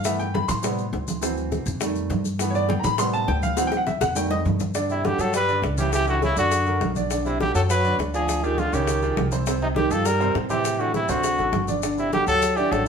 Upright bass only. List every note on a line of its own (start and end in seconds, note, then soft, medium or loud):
0.00 0.43 G2 medium
0.49 0.90 A2 loud
0.93 1.61 D2 loud
1.66 2.07 F2 medium
2.10 2.78 G2 loud
2.84 3.25 A2 medium
3.28 3.96 D2 loud
4.01 4.42 F2 medium
4.45 5.13 G2 medium
5.18 5.59 G2 medium
5.62 6.31 C#2 medium
6.37 6.78 F#2 medium
6.81 7.49 B1 medium
7.54 7.96 F#2 medium
7.99 8.67 D2 medium
8.73 9.14 C#2 medium
9.17 9.85 C2 medium
9.91 10.32 G2 medium
10.35 11.04 A2 medium
11.09 11.37 D2 medium
11.39 11.52 A1 medium
11.52 12.22 G1 medium
12.27 12.68 D2 medium
12.72 12.88 A1 medium